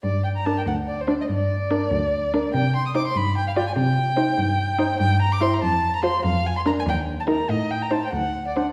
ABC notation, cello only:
X:1
M:6/8
L:1/8
Q:3/8=96
K:Gm
V:1 name="Cello" clef=bass
G,,3 D,,3 | G,,3 D,,3 | C,3 G,,3 | C,3 G,,3 |
G,,3 F,,3 | F,,3 E,,3 | A,,3 D,,3 |]